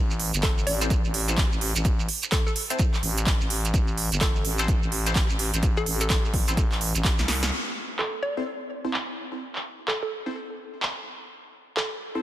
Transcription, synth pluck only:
0.43 0.65 A4 medium
0.67 1.14 D5 medium
2.32 2.41 A4 loud
2.47 2.52 A4 medium
4.21 4.43 A4 medium
5.77 5.98 A4 loud
6.01 6.07 A4 medium
6.10 6.19 A4 medium
7.99 8.21 A4 medium
8.23 8.70 D5 medium
9.88 9.97 A4 medium
10.03 10.08 A4 medium
11.77 11.99 A4 medium

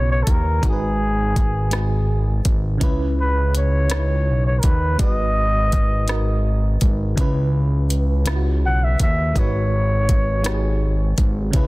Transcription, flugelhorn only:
0.12 0.24 C#5 medium
0.23 0.32 A4 medium
0.30 0.65 A#4 medium
0.68 2.44 G#4 medium
3.20 3.53 B4 medium
3.57 4.43 C#5 medium
4.47 4.61 C#5 medium
4.59 4.65 A#4 medium
4.64 5.00 B4 medium
5.00 6.78 D#5 medium
8.66 8.86 F#5 medium
8.84 9.01 E5 medium
9.02 9.40 E5 medium
9.39 11.19 C#5 medium

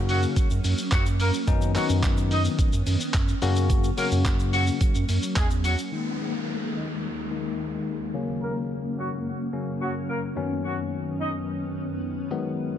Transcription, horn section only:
0.09 0.20 F#3 medium
0.09 0.19 F#4 medium
0.92 1.03 F#3 medium
0.92 1.02 F#4 medium
1.20 1.31 A#3 medium
1.20 1.30 A#4 medium
1.75 1.86 F#3 medium
1.75 1.86 F#4 medium
2.31 2.41 D#4 medium
2.31 2.42 D#5 medium
3.98 4.08 A#3 medium
3.98 4.08 A#4 medium
4.53 4.64 F#3 medium
4.53 4.63 F#4 medium
5.36 5.47 G#3 medium
5.36 5.47 G#4 medium
5.64 5.75 F#3 medium
5.64 5.75 F#4 medium
6.20 6.31 G#3 soft
6.20 6.30 G#4 medium
6.75 6.86 D#4 medium
6.75 6.86 D#5 medium
8.42 8.53 A#3 medium
8.42 8.52 A#4 medium
8.97 9.08 F#3 medium
8.97 9.08 F#4 medium
9.81 9.92 F#3 medium
9.81 9.91 F#4 medium
10.09 10.20 A#3 medium
10.09 10.19 A#4 medium
10.64 10.75 F#3 medium
10.64 10.75 F#4 medium
11.20 11.30 D#4 medium
11.20 11.31 D#5 medium

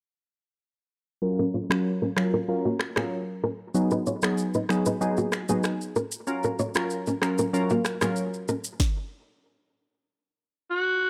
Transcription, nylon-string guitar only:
1.39 1.49 C#4 medium
1.39 1.49 A#4 medium
1.54 1.65 F4 medium
1.54 1.65 C#5 medium
2.02 2.12 C#4 medium
2.02 2.12 A#4 medium
2.34 2.44 C#4 medium
2.34 2.44 A#4 medium
2.65 2.76 A#3 medium
2.65 2.75 F#4 medium
2.97 3.07 B3 medium
2.97 3.07 G#4 medium
3.44 3.55 C#4 medium
3.44 3.54 A#4 medium
3.92 4.02 D#4 medium
3.92 4.01 B4 medium
4.07 4.18 F4 medium
4.07 4.17 C#5 medium
4.55 4.65 D#4 medium
4.55 4.65 B4 medium
4.86 4.97 D#4 medium
4.86 4.96 B4 medium
5.18 5.28 A#3 medium
5.18 5.28 F#4 medium
5.49 5.60 B3 medium
5.49 5.59 G#4 medium
5.96 6.07 C#4 medium
5.96 6.07 A#4 medium
6.44 6.55 C#4 medium
6.44 6.54 A#4 medium
6.59 6.71 F4 medium
6.59 6.70 C#5 medium
7.07 7.18 C#4 medium
7.07 7.17 A#4 medium
7.39 7.49 C#4 medium
7.39 7.49 A#4 medium
7.71 7.81 A#3 medium
7.71 7.80 F#4 medium
8.02 8.13 B3 medium
8.02 8.12 G#4 medium
8.49 8.60 C#4 medium
8.49 8.59 A#4 medium

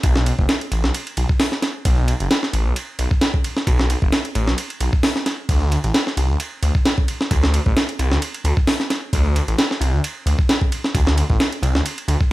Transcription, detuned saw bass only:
0.04 0.32 B1 loud
0.38 0.45 F#1 medium
0.72 0.86 A1 loud
0.84 0.91 B1 loud
1.17 1.25 B1 medium
1.85 2.13 B1 loud
2.20 2.27 F#1 medium
2.53 2.67 A1 medium
2.66 2.73 B1 loud
2.99 3.07 B1 medium
3.67 3.95 B1 loud
4.02 4.09 F#1 medium
4.35 4.49 A1 medium
4.48 4.54 B1 loud
4.81 4.89 B1 medium
5.49 5.77 D2 loud
5.84 5.91 A1 medium
6.17 6.31 C2 loud
6.29 6.36 D2 loud
6.63 6.71 D2 medium
7.31 7.59 D2 loud
7.66 7.73 A1 medium
7.99 8.13 C2 loud
8.11 8.18 D2 loud
8.44 8.52 D2 medium
9.13 9.41 D2 loud
9.48 9.54 A1 medium
9.81 9.95 C2 loud
9.93 10.00 D2 loud
10.26 10.34 D2 medium
10.95 11.23 D2 loud
11.30 11.36 A1 medium
11.62 11.76 C2 loud
11.75 11.82 D2 loud
12.08 12.16 D2 loud

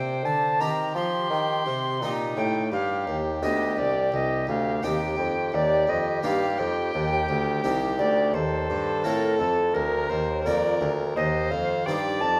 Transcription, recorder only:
0.00 0.26 G5 medium
0.25 0.62 A5 loud
0.60 0.95 A#5 loud
0.95 2.11 C6 loud
2.36 2.71 G5 loud
2.72 3.17 F5 loud
3.42 3.80 D#5 loud
3.78 4.13 D5 loud
4.14 4.48 D#5 medium
4.49 4.85 F5 loud
4.83 5.56 G5 loud
5.54 5.90 D5 loud
5.89 6.21 D#5 loud
6.22 6.59 F5 loud
6.58 7.75 G5 loud
7.98 8.35 D5 loud
8.34 9.05 C5 loud
9.04 9.37 A#4 loud
9.38 9.75 A4 loud
9.73 10.11 A#4 loud
10.09 10.47 C5 loud
10.45 10.91 D5 loud
11.15 11.52 D#5 loud
11.50 11.87 F5 loud
11.85 12.22 G5 loud
12.20 12.40 A5 loud

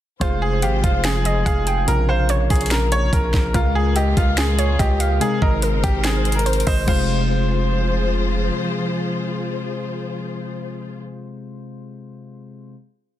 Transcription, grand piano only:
0.21 0.38 F4 medium
0.42 0.59 G#4 medium
0.63 0.80 G4 medium
0.84 1.01 F4 medium
1.05 1.44 G#4 medium
1.46 1.85 G#4 medium
1.88 2.05 A#4 loud
2.09 2.26 C5 medium
2.50 2.68 G#4 medium
2.71 2.88 A#4 medium
2.92 3.09 C#5 loud
3.13 3.52 A#4 medium
3.54 3.72 F4 medium
3.75 3.92 G#4 medium
3.96 4.13 G4 loud
4.17 4.34 F4 medium
4.38 4.77 G#4 medium
4.80 5.19 G4 medium
5.21 5.38 G#4 medium
5.42 5.59 A#4 medium
5.84 6.01 G4 medium
6.04 6.34 G#4 medium
6.36 6.65 A#4 medium
6.67 6.84 C5 medium
6.88 8.09 C5 medium

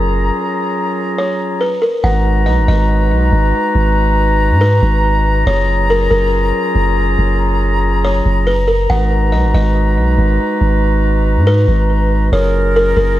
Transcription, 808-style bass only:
0.00 0.31 F#1 loud
2.04 2.49 G#1 loud
2.47 2.59 B1 loud
2.58 2.68 G#1 loud
2.68 3.13 G#1 loud
3.11 3.32 B1 loud
3.33 3.53 G#1 loud
3.75 4.52 G#1 loud
4.50 4.81 G#2 medium
4.83 5.44 G#1 loud
5.47 6.08 F#1 loud
6.11 6.52 F#1 loud
6.75 7.17 F#1 loud
7.18 8.22 F#1 loud
8.26 8.87 F#1 loud
8.90 9.34 G#1 loud
9.33 9.45 B1 loud
9.43 9.54 G#1 loud
9.54 9.99 G#1 loud
9.97 10.17 B1 loud
10.18 10.39 G#1 loud
10.61 11.38 G#1 loud
11.36 11.67 G#2 medium
11.68 12.30 G#1 loud
12.32 12.94 F#1 loud
12.97 13.20 F#1 loud

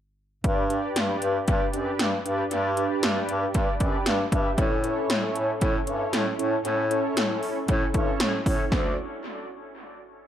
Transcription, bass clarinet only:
0.44 0.80 G2 loud
0.96 1.14 G2 medium
1.22 1.40 G2 loud
1.48 1.66 G2 loud
1.73 1.92 F#2 medium
1.99 2.17 G2 medium
2.25 2.43 G2 loud
2.51 2.87 G2 loud
3.03 3.21 G2 loud
3.29 3.47 G2 loud
3.55 3.73 G2 loud
3.80 3.99 F#2 medium
4.06 4.24 G2 loud
4.32 4.50 G2 loud
4.58 4.94 A2 loud
5.10 5.28 A2 loud
5.36 5.54 A2 loud
5.62 5.80 A2 loud
5.87 6.05 G2 medium
6.13 6.31 A2 loud
6.39 6.57 A2 loud
6.65 7.01 A2 loud
7.17 7.35 A2 loud
7.69 7.87 A2 loud
7.94 8.12 G2 medium
8.20 8.38 A2 loud
8.46 8.64 A2 loud
8.72 8.96 D2 loud

